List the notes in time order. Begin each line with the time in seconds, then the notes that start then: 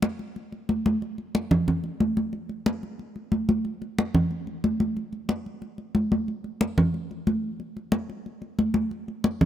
0.02 high conga
0.19 high conga
0.36 high conga
0.52 high conga
0.69 high conga
0.86 high conga
1.02 high conga
1.18 high conga
1.35 high conga
1.51 high conga, low conga
1.68 high conga, low conga
1.84 high conga
2.00 high conga
2.17 high conga
2.33 high conga
2.49 high conga
2.66 high conga
2.83 high conga
2.99 high conga
3.16 high conga
3.32 high conga
3.49 high conga
3.65 high conga
3.82 high conga
3.99 high conga
4.15 high conga, low conga
4.31 high conga
4.47 high conga
4.64 high conga
4.80 high conga
4.97 high conga
5.13 high conga
5.29 high conga
5.46 high conga
5.62 high conga
5.78 high conga
5.95 high conga
6.12 high conga
6.28 high conga
6.44 high conga
6.61 high conga
6.78 high conga, low conga
6.94 high conga
7.11 high conga
7.27 high conga
7.60 high conga
7.77 high conga
7.92 high conga
8.10 high conga
8.26 high conga
8.42 high conga
8.59 high conga
8.74 high conga
8.91 high conga
9.08 high conga
9.24 high conga
9.41 high conga, low conga